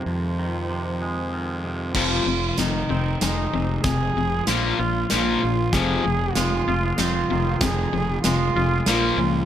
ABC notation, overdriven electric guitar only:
X:1
M:3/4
L:1/8
Q:1/4=95
K:Fm
V:1 name="Overdriven electric guitar" clef=bass
z6 | [F,,C,F,] [F,,C,] [F,,C,] [F,,C,] [F,,C,] [F,,C,] | [F,,C,] [F,,C,] [B,,F,B,] [B,,F,] [B,,F,B,] [B,,F,] | [F,,C,F,] [F,,C,] [F,,C,] [F,,C,] [F,,C,] [F,,C,] |
[F,,C,] [F,,C,] [F,,C,] [F,,C,] [B,,F,B,] [B,,F,] |]